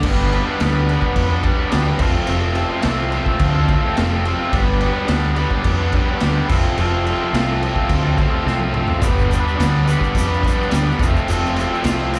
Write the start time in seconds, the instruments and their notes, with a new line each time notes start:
0.03 picked electric bass G1, overdriven electric guitar G3 B3 D4, kick, crash
0.08 overdriven electric guitar B4
0.31 overdriven electric guitar G3 B3 D4, crash
0.35 overdriven electric guitar B4
0.46 overdriven electric guitar B3 D4 B4
0.59 picked electric bass D2, overdriven electric guitar G3 B3 D4, snare, crash
0.63 overdriven electric guitar B4
0.87 overdriven electric guitar G3 B3 D4 B4, crash
1.01 overdriven electric guitar B3 B4, kick
1.06 overdriven electric guitar D4
1.15 picked electric bass F2, kick, crash
1.28 overdriven electric guitar B3 B4
1.33 overdriven electric guitar D4
1.43 overdriven electric guitar G3 B3 D4 B4, kick, crash
1.56 overdriven electric guitar B3 B4
1.61 overdriven electric guitar D4
1.69 overdriven electric guitar G3 B3 D4, snare, crash
1.73 picked electric bass D2, overdriven electric guitar B4
1.84 overdriven electric guitar B3 D4 B4
1.97 picked electric bass F1, overdriven electric guitar F3 A3 C4, kick, crash
2.01 overdriven electric guitar F4 A4
2.26 picked electric bass F1, overdriven electric guitar F3 A3 C4 F4, crash
2.30 overdriven electric guitar A4
2.53 overdriven electric guitar A3 C4 F4, crash
2.57 overdriven electric guitar A4
2.69 overdriven electric guitar C4 F4 A4
2.81 picked electric bass C2, overdriven electric guitar F3 A3 C4 F4, snare, crash
2.85 overdriven electric guitar A4
3.09 overdriven electric guitar A3 C4 F4, crash
3.14 overdriven electric guitar A4
3.25 overdriven electric guitar F4 A4, kick
3.29 overdriven electric guitar C4
3.39 picked electric bass D2, kick, crash
3.53 overdriven electric guitar F4 A4
3.57 overdriven electric guitar C4
3.68 overdriven electric guitar A3 C4 F4, kick, crash
3.72 overdriven electric guitar A4
3.82 overdriven electric guitar F4 A4
3.86 overdriven electric guitar C4
3.97 picked electric bass F1, overdriven electric guitar F3 A3 C4 F4, snare, crash
4.01 overdriven electric guitar A4
4.10 overdriven electric guitar F4 A4
4.14 overdriven electric guitar C4
4.24 overdriven electric guitar A3 C4 F4, crash
4.29 overdriven electric guitar A4
4.51 picked electric bass G1, overdriven electric guitar G3 B3 D4, kick, crash
4.56 overdriven electric guitar B4
4.81 overdriven electric guitar G3 B3 D4, crash
4.85 overdriven electric guitar B4
4.94 overdriven electric guitar B3 D4 B4
5.08 picked electric bass D2, overdriven electric guitar G3 B3 D4, snare, crash
5.12 overdriven electric guitar B4
5.36 overdriven electric guitar G3 B3 D4 B4, crash
5.51 overdriven electric guitar B3 B4, kick
5.55 overdriven electric guitar D4
5.64 picked electric bass F2, kick, crash
5.79 overdriven electric guitar B3 B4
5.83 overdriven electric guitar D4
5.92 overdriven electric guitar G3 B3 D4 B4, kick, crash
6.07 overdriven electric guitar B3 D4 B4
6.20 picked electric bass D2, overdriven electric guitar G3 B3 D4, snare, crash
6.26 overdriven electric guitar B4
6.34 overdriven electric guitar B3 B4
6.39 overdriven electric guitar D4
6.48 picked electric bass F1, overdriven electric guitar F3 A3 C4 F4, kick, crash
6.52 overdriven electric guitar A4
6.76 picked electric bass F1, overdriven electric guitar F3 A3 C4 F4, crash
6.81 overdriven electric guitar A4
7.05 overdriven electric guitar A3 C4 F4, crash
7.09 overdriven electric guitar A4
7.20 overdriven electric guitar F4 A4
7.25 overdriven electric guitar C4
7.33 picked electric bass C2, overdriven electric guitar F3 A3 C4 F4, snare, crash
7.37 overdriven electric guitar A4
7.61 overdriven electric guitar A3 C4 F4, crash
7.65 overdriven electric guitar A4
7.74 overdriven electric guitar C4 F4 A4, kick
7.89 picked electric bass D2, kick, crash
8.04 overdriven electric guitar C4 F4 A4
8.17 overdriven electric guitar A3 C4 F4 A4, kick, crash
8.30 overdriven electric guitar F4 A4
8.35 overdriven electric guitar C4
8.44 picked electric bass C2, overdriven electric guitar F3 A3 C4 F4 A4, snare
8.60 overdriven electric guitar F4 A4, high tom
8.64 overdriven electric guitar C4
8.73 overdriven electric guitar A3 C4 F4, mid tom
8.77 overdriven electric guitar A4
8.88 floor tom
9.00 picked electric bass G1, overdriven electric guitar G3 B3 D4, kick, crash, shaker
9.05 overdriven electric guitar B4
9.19 shaker
9.27 overdriven electric guitar G3 B3 D4, crash
9.33 overdriven electric guitar B4, shaker
9.40 overdriven electric guitar B3 B4
9.45 overdriven electric guitar D4, shaker
9.55 picked electric bass D2, overdriven electric guitar G3 B3 D4
9.59 overdriven electric guitar B4, snare, crash, shaker
9.84 overdriven electric guitar G3 B3 D4, crash
9.88 overdriven electric guitar B4, shaker
9.99 overdriven electric guitar B3 B4, kick
10.03 overdriven electric guitar D4, shaker
10.14 picked electric bass F2, kick, crash, shaker
10.27 overdriven electric guitar B3 B4
10.32 overdriven electric guitar D4, shaker
10.41 overdriven electric guitar G3 B3 D4, kick, crash
10.46 overdriven electric guitar B4, shaker
10.56 overdriven electric guitar B3 B4
10.60 overdriven electric guitar D4, shaker
10.70 picked electric bass D2, overdriven electric guitar G3 B3 D4, snare, crash
10.74 overdriven electric guitar B4, shaker
10.85 overdriven electric guitar B3 B4
10.90 overdriven electric guitar D4, shaker
10.99 picked electric bass F1, overdriven electric guitar F3 A3 C4, kick, crash, shaker
11.03 overdriven electric guitar F4 A4
11.16 shaker
11.28 picked electric bass F1, overdriven electric guitar F3 A3 C4, crash, shaker
11.32 overdriven electric guitar F4 A4
11.46 shaker
11.56 overdriven electric guitar A3 C4 F4, crash, shaker
11.61 overdriven electric guitar A4
11.71 overdriven electric guitar C4 F4 A4, shaker
11.83 picked electric bass C2, overdriven electric guitar F3 A3 C4 F4, snare, crash, shaker
11.87 overdriven electric guitar A4
12.11 overdriven electric guitar A3 C4, crash, shaker
12.15 overdriven electric guitar F4